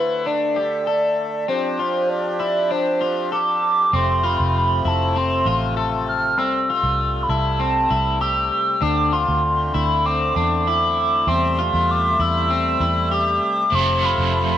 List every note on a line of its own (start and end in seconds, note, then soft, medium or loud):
0.00 1.46 D3 medium
0.00 1.46 A3 medium
0.00 0.26 E4 medium
0.00 1.44 A4 medium
0.00 0.28 B4 medium
0.00 1.46 E5 medium
0.26 0.57 D4 medium
0.26 0.87 D5 medium
0.56 0.87 G4 medium
0.87 1.48 A4 medium
0.87 1.51 D5 medium
1.48 3.91 F3 medium
1.48 1.79 C4 medium
1.48 3.91 C4 medium
1.48 3.90 D4 medium
1.48 3.91 G4 medium
1.48 2.11 C5 medium
1.79 2.39 F4 medium
2.09 2.73 D5 medium
2.40 2.70 E4 medium
2.71 3.01 D4 medium
2.71 3.32 C5 medium
3.01 3.32 F4 medium
3.32 3.93 A4 medium
3.32 3.97 D6 loud
3.93 4.37 F1 medium
3.93 8.79 C3 medium
3.93 6.36 F3 medium
3.93 8.79 A3 medium
3.93 11.24 C4 medium
3.93 4.24 C4 medium
3.93 4.27 C6 loud
4.24 4.85 F4 medium
4.24 4.55 B5 medium
4.40 4.83 F1 loud
4.57 4.89 B5 loud
4.85 5.43 F1 loud
4.85 5.15 E4 medium
4.85 5.19 A5 medium
5.16 5.46 C4 medium
5.16 5.78 C6 loud
5.45 6.37 A1 medium
5.45 5.76 F4 medium
5.77 6.38 A4 medium
6.08 6.40 F6 loud
6.37 6.81 C2 loud
6.37 8.81 G3 medium
6.37 6.69 C4 medium
6.37 7.24 E6 loud
6.70 7.29 F4 medium
6.83 7.27 C2 medium
7.23 7.31 B5 medium
7.29 7.88 C2 loud
7.29 7.60 E4 medium
7.29 8.23 A5 loud
7.60 7.91 C4 medium
7.91 8.49 C2 medium
7.91 8.21 E4 medium
8.21 8.83 G4 medium
8.21 8.84 E6 loud
8.82 9.26 D2 loud
8.82 11.26 D3 medium
8.82 14.58 A3 medium
8.82 9.13 D4 medium
8.82 9.12 D6 loud
9.13 9.74 F4 medium
9.13 9.75 C6 medium
9.29 9.72 D2 loud
9.74 10.33 D2 medium
9.74 10.05 E4 medium
9.74 10.07 B5 loud
10.06 10.36 C4 medium
10.06 10.67 D6 loud
10.36 11.24 E2 medium
10.36 10.67 D4 medium
10.67 11.28 E4 medium
10.67 11.30 D6 loud
11.27 11.71 E2 loud
11.27 14.58 C3 medium
11.27 13.70 G3 medium
11.27 11.58 C4 medium
11.27 14.58 E5 medium
11.27 11.92 C6 loud
11.58 12.19 F4 medium
11.73 12.17 E2 medium
11.91 12.23 D6 loud
12.19 12.77 E2 loud
12.19 12.50 E4 medium
12.19 13.15 E6 loud
12.50 12.81 C4 medium
12.80 13.38 E2 medium
12.80 13.11 E4 medium
13.11 13.72 G4 medium
13.11 13.43 D6 medium
13.44 13.76 D6 loud
13.71 14.16 F1 medium
13.71 14.58 F3 medium
13.71 14.58 A3 medium
13.71 14.03 C4 medium
13.71 14.58 C4 medium
13.75 14.58 E4 medium
13.75 14.58 A4 medium
13.75 14.07 C6 loud
14.02 14.58 F4 medium
14.02 14.35 B5 medium
14.18 14.58 F1 loud
14.35 14.58 B5 loud